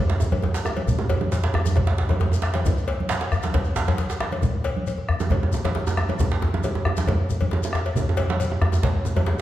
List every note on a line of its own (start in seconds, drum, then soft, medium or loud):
0.10 djembe slap medium
0.20 djembe tone medium
0.20 shekere medium
0.32 cowbell soft
0.32 djembe slap soft
0.32 high conga medium
0.32 djembe tone medium
0.32 djembe bass medium
0.43 djembe slap medium
0.43 djembe bass medium
0.54 djembe slap medium
0.54 djembe slap soft
0.54 shekere soft
0.65 bombo rim medium
0.65 djembe tone medium
0.65 shekere soft
0.77 cowbell soft
0.77 djembe slap soft
0.77 high conga medium
0.87 bombo low medium
0.87 djembe slap soft
0.87 high conga soft
0.87 djembe bass medium
0.87 low conga medium
0.87 shekere medium
0.99 djembe tone loud
0.99 djembe tone medium
1.09 cowbell medium
1.09 djembe slap medium
1.09 djembe bass medium
1.21 djembe tone medium
1.21 high conga medium
1.32 cowbell soft
1.32 djembe slap medium
1.32 djembe slap soft
1.32 shekere medium
1.44 djembe slap medium
1.44 djembe slap soft
1.44 djembe tone medium
1.54 bombo rim medium
1.54 djembe slap soft
1.54 djembe tone loud
1.54 djembe bass medium
1.65 bombo rim soft
1.65 djembe slap medium
1.65 high conga medium
1.65 djembe bass medium
1.65 shekere soft
1.76 bombo low medium
1.76 cowbell soft
1.76 djembe slap soft
1.76 djembe tone medium
1.76 high conga soft
1.76 low conga medium
1.87 djembe slap medium
1.87 djembe slap soft
1.98 djembe slap medium
2.09 cowbell soft
2.09 djembe slap soft
2.09 djembe tone medium
2.09 high conga medium
2.09 djembe bass medium
2.20 djembe slap medium
2.20 djembe bass medium
2.32 djembe tone medium
2.32 shekere soft
2.42 bombo rim medium
2.42 djembe slap medium
2.42 djembe tone medium
2.42 shekere soft
2.54 cowbell soft
2.54 djembe slap medium
2.54 high conga medium
2.55 djembe slap soft
2.65 bombo low medium
2.65 djembe slap soft
2.65 djembe bass medium
2.65 low conga medium
2.65 shekere medium
2.77 djembe tone medium
2.77 shekere soft
2.87 bombo rim soft
2.87 cowbell medium
2.87 djembe slap medium
2.99 bombo rim soft
2.99 high conga medium
3.09 cowbell soft
3.09 djembe slap loud
3.09 shekere soft
3.21 bombo rim soft
3.21 djembe slap medium
3.21 djembe tone medium
3.21 high conga soft
3.21 shekere soft
3.32 bombo rim medium
3.32 djembe slap soft
3.32 high conga soft
3.32 djembe bass medium
3.32 shekere soft
3.42 bombo rim soft
3.42 djembe slap medium
3.42 high conga medium
3.42 shekere soft
3.54 bombo low medium
3.54 cowbell soft
3.54 djembe slap medium
3.54 djembe slap soft
3.54 djembe tone medium
3.54 low conga medium
3.64 djembe slap soft
3.64 shekere soft
3.76 djembe slap loud
3.76 high conga soft
3.76 shekere soft
3.88 cowbell soft
3.88 djembe slap soft
3.88 djembe slap medium
3.88 high conga medium
3.88 djembe tone medium
3.88 djembe bass medium
3.98 djembe slap medium
3.98 high conga soft
3.98 shekere soft
4.10 djembe slap medium
4.10 shekere soft
4.20 bombo rim medium
4.20 djembe slap medium
4.20 djembe tone medium
4.32 cowbell soft
4.32 high conga soft
4.42 bombo low medium
4.42 djembe slap soft
4.42 high conga soft
4.42 djembe bass medium
4.42 low conga medium
4.42 shekere soft
4.53 djembe tone medium
4.64 cowbell medium
4.64 djembe slap medium
4.76 high conga medium
4.87 cowbell soft
4.87 djembe slap soft
4.87 shekere soft
4.98 djembe slap soft
4.98 djembe tone medium
5.09 bombo rim medium
5.09 djembe slap soft
5.09 djembe bass medium
5.20 bombo rim soft
5.20 djembe slap medium
5.20 djembe tone medium
5.20 high conga medium
5.20 shekere soft
5.30 bombo low medium
5.30 cowbell soft
5.30 djembe slap soft
5.30 high conga soft
5.30 djembe tone medium
5.30 low conga medium
5.43 djembe tone medium
5.52 djembe tone medium
5.52 shekere soft
5.64 cowbell soft
5.64 djembe slap soft
5.64 djembe slap medium
5.64 djembe tone medium
5.64 high conga medium
5.64 djembe bass medium
5.75 djembe slap medium
5.75 djembe tone medium
5.87 djembe slap soft
5.87 djembe tone loud
5.87 shekere soft
5.97 bombo rim loud
5.97 djembe tone medium
5.97 shekere soft
6.09 cowbell soft
6.09 djembe slap soft
6.09 high conga soft
6.09 djembe tone medium
6.19 bombo low medium
6.19 djembe slap soft
6.19 djembe tone medium
6.19 high conga soft
6.19 djembe bass medium
6.19 low conga medium
6.19 shekere medium
6.32 djembe slap medium
6.32 djembe tone medium
6.42 djembe slap medium
6.42 djembe tone medium
6.54 high conga medium
6.54 djembe tone loud
6.63 cowbell soft
6.63 djembe slap soft
6.63 djembe tone medium
6.63 shekere soft
6.75 djembe slap soft
6.75 djembe tone medium
6.85 bombo rim medium
6.85 djembe slap soft
6.85 djembe tone medium
6.85 djembe bass medium
6.97 bombo rim soft
6.97 djembe slap medium
6.97 high conga medium
6.97 shekere soft
7.07 bombo low medium
7.07 cowbell soft
7.07 djembe slap soft
7.07 djembe tone medium
7.07 high conga soft
7.07 low conga medium
7.20 djembe slap soft
7.30 shekere medium
7.41 cowbell soft
7.41 djembe slap soft
7.41 djembe tone medium
7.41 high conga medium
7.41 djembe bass medium
7.51 djembe slap medium
7.51 djembe tone loud
7.62 djembe slap soft
7.62 djembe tone medium
7.62 shekere soft
7.73 bombo rim medium
7.73 djembe slap medium
7.73 djembe tone medium
7.73 shekere soft
7.85 cowbell medium
7.85 djembe slap soft
7.95 bombo low medium
7.95 djembe slap soft
7.95 high conga soft
7.95 djembe tone medium
7.95 djembe bass medium
7.95 low conga medium
7.95 shekere soft
8.06 djembe tone medium
8.09 djembe tone medium
8.17 cowbell medium
8.17 djembe slap medium
8.17 djembe tone medium
8.30 djembe slap medium
8.30 high conga medium
8.39 cowbell medium
8.39 djembe slap soft
8.39 shekere soft
8.50 djembe slap soft
8.50 djembe tone medium
8.61 bombo rim medium
8.61 djembe slap soft
8.61 djembe tone medium
8.61 djembe bass medium
8.72 bombo rim soft
8.72 djembe slap medium
8.72 djembe tone medium
8.72 shekere soft
8.83 bombo low medium
8.83 cowbell medium
8.83 djembe slap soft
8.83 djembe slap medium
8.83 djembe tone medium
8.83 high conga soft
8.83 low conga medium
8.94 djembe slap soft
9.05 djembe tone medium
9.05 shekere soft
9.16 cowbell medium
9.16 djembe slap soft
9.16 djembe tone medium
9.16 high conga medium
9.16 djembe bass medium
9.26 djembe slap medium
9.26 djembe tone medium
9.38 djembe slap soft